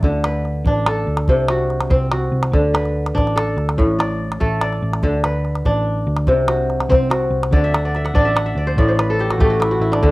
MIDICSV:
0, 0, Header, 1, 4, 480
1, 0, Start_track
1, 0, Tempo, 416089
1, 44, Time_signature, 12, 3, 24, 8
1, 11666, End_track
2, 0, Start_track
2, 0, Title_t, "Kora"
2, 0, Program_c, 0, 46
2, 0, Note_on_c, 0, 57, 88
2, 0, Note_on_c, 0, 69, 72
2, 0, Note_on_c, 0, 74, 61
2, 47, Note_on_c, 0, 50, 85
2, 288, Note_on_c, 0, 71, 57
2, 773, Note_on_c, 0, 62, 82
2, 831, Note_off_c, 0, 69, 0
2, 835, Note_off_c, 0, 74, 0
2, 1008, Note_on_c, 0, 69, 59
2, 1488, Note_on_c, 0, 48, 76
2, 1541, Note_off_c, 0, 50, 0
2, 1557, Note_off_c, 0, 71, 0
2, 1616, Note_off_c, 0, 57, 0
2, 1730, Note_on_c, 0, 66, 61
2, 2196, Note_on_c, 0, 60, 78
2, 2200, Note_off_c, 0, 60, 0
2, 2202, Note_on_c, 0, 60, 61
2, 2438, Note_off_c, 0, 66, 0
2, 2443, Note_on_c, 0, 66, 58
2, 2528, Note_off_c, 0, 69, 0
2, 2710, Note_off_c, 0, 62, 0
2, 2923, Note_on_c, 0, 50, 79
2, 2981, Note_off_c, 0, 48, 0
2, 3160, Note_on_c, 0, 71, 55
2, 3229, Note_off_c, 0, 60, 0
2, 3629, Note_on_c, 0, 62, 84
2, 3872, Note_on_c, 0, 69, 59
2, 4129, Note_off_c, 0, 66, 0
2, 4361, Note_on_c, 0, 45, 82
2, 4421, Note_off_c, 0, 50, 0
2, 4578, Note_off_c, 0, 71, 0
2, 4599, Note_on_c, 0, 74, 68
2, 5078, Note_off_c, 0, 69, 0
2, 5079, Note_on_c, 0, 57, 75
2, 5083, Note_on_c, 0, 69, 62
2, 5313, Note_off_c, 0, 74, 0
2, 5318, Note_on_c, 0, 74, 64
2, 5567, Note_off_c, 0, 62, 0
2, 5805, Note_on_c, 0, 50, 82
2, 5861, Note_off_c, 0, 45, 0
2, 6044, Note_on_c, 0, 71, 65
2, 6525, Note_on_c, 0, 62, 84
2, 6596, Note_off_c, 0, 74, 0
2, 6603, Note_off_c, 0, 69, 0
2, 7242, Note_on_c, 0, 48, 78
2, 7300, Note_off_c, 0, 50, 0
2, 7311, Note_off_c, 0, 71, 0
2, 7383, Note_off_c, 0, 57, 0
2, 7473, Note_on_c, 0, 66, 66
2, 7957, Note_on_c, 0, 60, 75
2, 7959, Note_off_c, 0, 60, 0
2, 7959, Note_on_c, 0, 60, 77
2, 8185, Note_off_c, 0, 66, 0
2, 8190, Note_on_c, 0, 66, 58
2, 8462, Note_off_c, 0, 62, 0
2, 8679, Note_on_c, 0, 50, 80
2, 8684, Note_on_c, 0, 74, 69
2, 8741, Note_off_c, 0, 48, 0
2, 8811, Note_on_c, 0, 76, 72
2, 8926, Note_on_c, 0, 78, 68
2, 9051, Note_off_c, 0, 74, 0
2, 9056, Note_on_c, 0, 74, 62
2, 9175, Note_off_c, 0, 76, 0
2, 9180, Note_on_c, 0, 76, 66
2, 9277, Note_off_c, 0, 78, 0
2, 9281, Note_on_c, 0, 78, 67
2, 9394, Note_off_c, 0, 74, 0
2, 9398, Note_on_c, 0, 74, 81
2, 9401, Note_on_c, 0, 62, 92
2, 9513, Note_off_c, 0, 76, 0
2, 9518, Note_on_c, 0, 76, 63
2, 9636, Note_off_c, 0, 78, 0
2, 9641, Note_on_c, 0, 78, 70
2, 9754, Note_off_c, 0, 76, 0
2, 9759, Note_on_c, 0, 76, 64
2, 9877, Note_off_c, 0, 66, 0
2, 9889, Note_off_c, 0, 74, 0
2, 9893, Note_on_c, 0, 74, 61
2, 10002, Note_on_c, 0, 72, 66
2, 10036, Note_off_c, 0, 60, 0
2, 10126, Note_off_c, 0, 74, 0
2, 10129, Note_on_c, 0, 45, 82
2, 10130, Note_on_c, 0, 74, 71
2, 10182, Note_off_c, 0, 50, 0
2, 10246, Note_off_c, 0, 72, 0
2, 10250, Note_on_c, 0, 72, 63
2, 10372, Note_on_c, 0, 71, 64
2, 10497, Note_on_c, 0, 69, 67
2, 10616, Note_on_c, 0, 67, 67
2, 10685, Note_off_c, 0, 78, 0
2, 10734, Note_on_c, 0, 66, 68
2, 10843, Note_off_c, 0, 67, 0
2, 10847, Note_on_c, 0, 57, 90
2, 10848, Note_on_c, 0, 67, 71
2, 10951, Note_off_c, 0, 76, 0
2, 10954, Note_off_c, 0, 66, 0
2, 10959, Note_on_c, 0, 66, 67
2, 11072, Note_on_c, 0, 64, 70
2, 11197, Note_off_c, 0, 66, 0
2, 11202, Note_on_c, 0, 66, 64
2, 11271, Note_off_c, 0, 67, 0
2, 11317, Note_off_c, 0, 64, 0
2, 11321, Note_on_c, 0, 64, 68
2, 11338, Note_off_c, 0, 62, 0
2, 11409, Note_off_c, 0, 74, 0
2, 11440, Note_on_c, 0, 62, 66
2, 11565, Note_on_c, 0, 50, 88
2, 11620, Note_off_c, 0, 72, 0
2, 11623, Note_off_c, 0, 45, 0
2, 11666, Note_off_c, 0, 50, 0
2, 11666, Note_off_c, 0, 57, 0
2, 11666, Note_off_c, 0, 62, 0
2, 11666, Note_off_c, 0, 64, 0
2, 11666, Note_off_c, 0, 66, 0
2, 11666, Note_off_c, 0, 69, 0
2, 11666, Note_off_c, 0, 71, 0
2, 11666, End_track
3, 0, Start_track
3, 0, Title_t, "Picked electric bass"
3, 0, Program_c, 1, 34
3, 35, Note_on_c, 1, 38, 94
3, 715, Note_off_c, 1, 38, 0
3, 744, Note_on_c, 1, 33, 107
3, 1204, Note_off_c, 1, 33, 0
3, 1233, Note_on_c, 1, 38, 85
3, 1463, Note_off_c, 1, 38, 0
3, 1482, Note_on_c, 1, 36, 90
3, 2159, Note_off_c, 1, 36, 0
3, 2188, Note_on_c, 1, 36, 86
3, 2646, Note_off_c, 1, 36, 0
3, 2673, Note_on_c, 1, 36, 88
3, 2899, Note_off_c, 1, 36, 0
3, 2906, Note_on_c, 1, 38, 101
3, 3590, Note_off_c, 1, 38, 0
3, 3630, Note_on_c, 1, 33, 101
3, 4087, Note_off_c, 1, 33, 0
3, 4113, Note_on_c, 1, 38, 91
3, 4343, Note_off_c, 1, 38, 0
3, 4355, Note_on_c, 1, 33, 94
3, 5035, Note_off_c, 1, 33, 0
3, 5087, Note_on_c, 1, 33, 92
3, 5536, Note_off_c, 1, 33, 0
3, 5564, Note_on_c, 1, 33, 84
3, 5789, Note_off_c, 1, 33, 0
3, 5802, Note_on_c, 1, 38, 94
3, 6478, Note_off_c, 1, 38, 0
3, 6524, Note_on_c, 1, 33, 105
3, 6974, Note_off_c, 1, 33, 0
3, 6999, Note_on_c, 1, 38, 96
3, 7226, Note_off_c, 1, 38, 0
3, 7231, Note_on_c, 1, 36, 94
3, 7913, Note_off_c, 1, 36, 0
3, 7948, Note_on_c, 1, 36, 97
3, 8405, Note_off_c, 1, 36, 0
3, 8425, Note_on_c, 1, 36, 88
3, 8656, Note_off_c, 1, 36, 0
3, 8663, Note_on_c, 1, 38, 94
3, 9349, Note_off_c, 1, 38, 0
3, 9388, Note_on_c, 1, 33, 99
3, 9846, Note_off_c, 1, 33, 0
3, 9866, Note_on_c, 1, 38, 90
3, 10100, Note_off_c, 1, 38, 0
3, 10106, Note_on_c, 1, 33, 96
3, 10791, Note_off_c, 1, 33, 0
3, 10819, Note_on_c, 1, 33, 100
3, 11282, Note_off_c, 1, 33, 0
3, 11302, Note_on_c, 1, 33, 95
3, 11538, Note_off_c, 1, 33, 0
3, 11548, Note_on_c, 1, 38, 97
3, 11666, Note_off_c, 1, 38, 0
3, 11666, End_track
4, 0, Start_track
4, 0, Title_t, "Calabash"
4, 33, Note_on_c, 9, 36, 71
4, 148, Note_off_c, 9, 36, 0
4, 279, Note_on_c, 9, 38, 60
4, 394, Note_off_c, 9, 38, 0
4, 521, Note_on_c, 9, 38, 18
4, 636, Note_off_c, 9, 38, 0
4, 757, Note_on_c, 9, 36, 68
4, 872, Note_off_c, 9, 36, 0
4, 998, Note_on_c, 9, 38, 70
4, 1113, Note_off_c, 9, 38, 0
4, 1352, Note_on_c, 9, 38, 48
4, 1467, Note_off_c, 9, 38, 0
4, 1475, Note_on_c, 9, 36, 60
4, 1590, Note_off_c, 9, 36, 0
4, 1713, Note_on_c, 9, 38, 60
4, 1829, Note_off_c, 9, 38, 0
4, 1964, Note_on_c, 9, 38, 20
4, 2079, Note_off_c, 9, 38, 0
4, 2083, Note_on_c, 9, 38, 51
4, 2198, Note_off_c, 9, 38, 0
4, 2202, Note_on_c, 9, 36, 72
4, 2202, Note_on_c, 9, 38, 22
4, 2317, Note_off_c, 9, 36, 0
4, 2317, Note_off_c, 9, 38, 0
4, 2441, Note_on_c, 9, 38, 61
4, 2556, Note_off_c, 9, 38, 0
4, 2801, Note_on_c, 9, 38, 54
4, 2916, Note_off_c, 9, 38, 0
4, 2925, Note_on_c, 9, 36, 66
4, 2925, Note_on_c, 9, 38, 21
4, 3041, Note_off_c, 9, 36, 0
4, 3041, Note_off_c, 9, 38, 0
4, 3169, Note_on_c, 9, 38, 63
4, 3285, Note_off_c, 9, 38, 0
4, 3292, Note_on_c, 9, 38, 21
4, 3408, Note_off_c, 9, 38, 0
4, 3534, Note_on_c, 9, 38, 45
4, 3649, Note_off_c, 9, 38, 0
4, 3664, Note_on_c, 9, 36, 66
4, 3664, Note_on_c, 9, 38, 20
4, 3774, Note_off_c, 9, 38, 0
4, 3774, Note_on_c, 9, 38, 21
4, 3779, Note_off_c, 9, 36, 0
4, 3890, Note_off_c, 9, 38, 0
4, 3894, Note_on_c, 9, 38, 68
4, 4009, Note_off_c, 9, 38, 0
4, 4129, Note_on_c, 9, 38, 19
4, 4244, Note_off_c, 9, 38, 0
4, 4255, Note_on_c, 9, 38, 49
4, 4371, Note_off_c, 9, 38, 0
4, 4377, Note_on_c, 9, 36, 59
4, 4493, Note_off_c, 9, 36, 0
4, 4615, Note_on_c, 9, 38, 60
4, 4731, Note_off_c, 9, 38, 0
4, 4980, Note_on_c, 9, 38, 45
4, 5088, Note_on_c, 9, 36, 61
4, 5095, Note_off_c, 9, 38, 0
4, 5203, Note_off_c, 9, 36, 0
4, 5322, Note_on_c, 9, 38, 51
4, 5438, Note_off_c, 9, 38, 0
4, 5452, Note_on_c, 9, 38, 17
4, 5568, Note_off_c, 9, 38, 0
4, 5692, Note_on_c, 9, 38, 50
4, 5799, Note_on_c, 9, 36, 61
4, 5807, Note_off_c, 9, 38, 0
4, 5914, Note_off_c, 9, 36, 0
4, 6043, Note_on_c, 9, 38, 57
4, 6158, Note_off_c, 9, 38, 0
4, 6284, Note_on_c, 9, 38, 15
4, 6399, Note_off_c, 9, 38, 0
4, 6407, Note_on_c, 9, 38, 35
4, 6520, Note_on_c, 9, 36, 57
4, 6522, Note_off_c, 9, 38, 0
4, 6636, Note_off_c, 9, 36, 0
4, 7113, Note_on_c, 9, 38, 50
4, 7228, Note_off_c, 9, 38, 0
4, 7232, Note_on_c, 9, 36, 61
4, 7348, Note_off_c, 9, 36, 0
4, 7475, Note_on_c, 9, 38, 64
4, 7591, Note_off_c, 9, 38, 0
4, 7727, Note_on_c, 9, 38, 19
4, 7842, Note_off_c, 9, 38, 0
4, 7849, Note_on_c, 9, 38, 49
4, 7964, Note_off_c, 9, 38, 0
4, 7981, Note_on_c, 9, 36, 64
4, 7981, Note_on_c, 9, 38, 19
4, 8097, Note_off_c, 9, 36, 0
4, 8097, Note_off_c, 9, 38, 0
4, 8205, Note_on_c, 9, 38, 60
4, 8321, Note_off_c, 9, 38, 0
4, 8573, Note_on_c, 9, 38, 53
4, 8685, Note_on_c, 9, 36, 67
4, 8688, Note_off_c, 9, 38, 0
4, 8800, Note_off_c, 9, 36, 0
4, 8934, Note_on_c, 9, 38, 62
4, 9049, Note_off_c, 9, 38, 0
4, 9169, Note_on_c, 9, 38, 20
4, 9284, Note_off_c, 9, 38, 0
4, 9294, Note_on_c, 9, 38, 40
4, 9409, Note_off_c, 9, 38, 0
4, 9413, Note_on_c, 9, 36, 62
4, 9528, Note_off_c, 9, 36, 0
4, 9651, Note_on_c, 9, 38, 71
4, 9767, Note_off_c, 9, 38, 0
4, 10134, Note_on_c, 9, 36, 61
4, 10249, Note_off_c, 9, 36, 0
4, 10372, Note_on_c, 9, 38, 68
4, 10487, Note_off_c, 9, 38, 0
4, 10607, Note_on_c, 9, 38, 19
4, 10722, Note_off_c, 9, 38, 0
4, 10734, Note_on_c, 9, 38, 56
4, 10850, Note_off_c, 9, 38, 0
4, 10855, Note_on_c, 9, 36, 66
4, 10855, Note_on_c, 9, 38, 22
4, 10970, Note_off_c, 9, 36, 0
4, 10970, Note_off_c, 9, 38, 0
4, 11098, Note_on_c, 9, 38, 60
4, 11214, Note_off_c, 9, 38, 0
4, 11457, Note_on_c, 9, 38, 57
4, 11572, Note_off_c, 9, 38, 0
4, 11573, Note_on_c, 9, 36, 71
4, 11666, Note_off_c, 9, 36, 0
4, 11666, End_track
0, 0, End_of_file